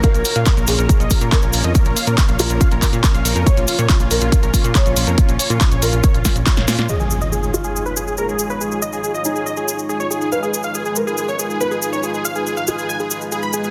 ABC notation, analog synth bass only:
X:1
M:4/4
L:1/16
Q:1/4=140
K:C#mix
V:1 name="Analog synth bass" clef=bass
z A,,, z A,, z A,,, A,,, A,,, z A,,, z A,, z A,,, A,,, E,, | z A,,, z A,, z A,,, A,,, A,,, z A,,, z A,, z A,,, A,,, E,, | z A,,, z A,, z A,,, A,,, A,,, z A,,, z A,, z A,,, A,,, E,, | z A,,, z A,, z A,,, A,,, A,,, z A,,, z A,,, z A,,, A,, A,, |
z16 | z16 | z16 | z16 |]